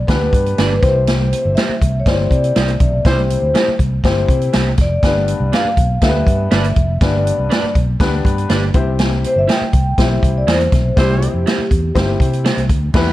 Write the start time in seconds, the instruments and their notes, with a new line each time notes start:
Already playing: vibraphone D5
0.07 fingered electric bass D2, upright piano B3 D4 G4 B4, vibraphone B4, kick, snare, closed hi-hat
0.33 fingered electric bass G2, kick, closed hi-hat
0.46 closed hi-hat
0.58 fingered electric bass G1, clean electric guitar D4 G4 B4 D5, snare, closed hi-hat
0.77 vibraphone B4 C5
0.83 fingered electric bass C2, upright piano C3 C4 E4 G4 C5, kick, snare, closed hi-hat
1.07 snare, closed hi-hat
1.33 closed hi-hat
1.45 fingered electric bass G1
1.55 clean electric guitar E4 G4 C5 E5, vibraphone E5, snare, closed hi-hat
1.69 muted fingered electric bass stroke
1.81 fingered electric bass C2, kick, closed hi-hat
2.00 vibraphone C#5
2.06 fingered electric bass G1, upright piano C4 E4 G4 C5, vibraphone D5, kick, snare, closed hi-hat
2.31 fingered electric bass C3, kick, closed hi-hat
2.44 closed hi-hat
2.56 fingered electric bass C2, clean electric guitar E4 G4 C5 E5, snare, closed hi-hat
2.68 closed hi-hat
2.80 fingered electric bass B1, upright piano C3, kick, closed hi-hat
3.05 fingered electric bass C2, horn section G3 E4 C5, upright piano C4 E4 G4 C5, vibraphone C5, kick, snare, closed hi-hat
3.30 closed hi-hat
3.42 fingered electric bass D2
3.54 clean electric guitar E4 G4 C5 E5, snare, closed hi-hat
3.68 muted fingered electric bass stroke
3.79 fingered electric bass C2, kick, closed hi-hat
4.04 fingered electric bass G1, upright piano C4 E4 G4 C5, kick, snare, closed hi-hat
4.29 fingered electric bass C3, kick, closed hi-hat
4.41 closed hi-hat
4.53 fingered electric bass C2, clean electric guitar E4 G4 C5 E5, snare, closed hi-hat
4.77 fingered electric bass F1, vibraphone D5, kick, snare, closed hi-hat
5.03 fingered electric bass G1, upright piano G2 B3 D4 G4 B4, kick, snare, closed hi-hat
5.28 closed hi-hat
5.40 fingered electric bass C2
5.53 clean electric guitar D4 G4 B4 D5, vibraphone F5, snare, closed hi-hat
5.65 muted fingered electric bass stroke
5.77 fingered electric bass B1, kick, closed hi-hat
6.02 fingered electric bass D2, upright piano B3 D4 G4 A4, vibraphone E5, kick, snare, closed hi-hat
6.09 upright piano B4
6.26 fingered electric bass G2, kick, closed hi-hat
6.51 fingered electric bass G1, clean electric guitar D4 G4 B4 D5, snare, closed hi-hat
6.64 closed hi-hat
6.76 fingered electric bass F1, kick, closed hi-hat
7.01 fingered electric bass G1, upright piano G2 B3 D4 G4 B4, vibraphone D5, kick, snare, closed hi-hat
7.27 closed hi-hat
7.38 fingered electric bass C2
7.50 clean electric guitar D4 G4 B4 D5, snare, closed hi-hat
7.63 muted fingered electric bass stroke
7.75 fingered electric bass B1, kick, closed hi-hat
8.00 fingered electric bass D2, upright piano B3 D4 G4 B4, kick, snare, closed hi-hat
8.25 fingered electric bass G2, kick, closed hi-hat
8.38 closed hi-hat
8.49 fingered electric bass G1, clean electric guitar D4 G4 B4 D5, snare, closed hi-hat
8.74 fingered electric bass C2, upright piano C3 C4 E4 G4 C5, kick, closed hi-hat
8.99 snare, closed hi-hat
9.24 vibraphone C5, closed hi-hat
9.36 fingered electric bass G1, vibraphone E5
9.48 clean electric guitar E4 G4 C5 E5, vibraphone G5, snare, closed hi-hat
9.61 muted fingered electric bass stroke
9.73 fingered electric bass C2, kick, closed hi-hat
9.98 fingered electric bass B1, upright piano C4 E4 G4 C5, vibraphone E5, kick, snare, closed hi-hat
10.23 fingered electric bass C2, kick, closed hi-hat
10.38 vibraphone D5
10.47 fingered electric bass E2, clean electric guitar E4 G4 C5 E5, vibraphone C5, snare, closed hi-hat
10.60 closed hi-hat
10.72 fingered electric bass B1, upright piano C3, kick, snare, closed hi-hat
10.96 fingered electric bass C2, horn section G3 E4 C5, upright piano C4 E4 G4 C5, vibraphone G4, kick, snare, closed hi-hat
11.22 closed hi-hat
11.34 fingered electric bass F2
11.46 clean electric guitar E4 G4 C5 E5, snare, closed hi-hat
11.58 muted fingered electric bass stroke
11.71 fingered electric bass E2, kick, closed hi-hat
11.95 fingered electric bass G1, upright piano C4 D#4 G4 C5, kick, snare, closed hi-hat
12.01 upright piano E4
12.20 fingered electric bass C3, kick, closed hi-hat
12.33 closed hi-hat
12.44 clean electric guitar E4 G4 C5 E5, snare, closed hi-hat
12.57 fingered electric bass C2, closed hi-hat
12.69 fingered electric bass D2, kick, closed hi-hat
12.94 fingered electric bass E2, horn section B2 G3 E4, upright piano E3 B3 E4 G4 B4, kick, snare, crash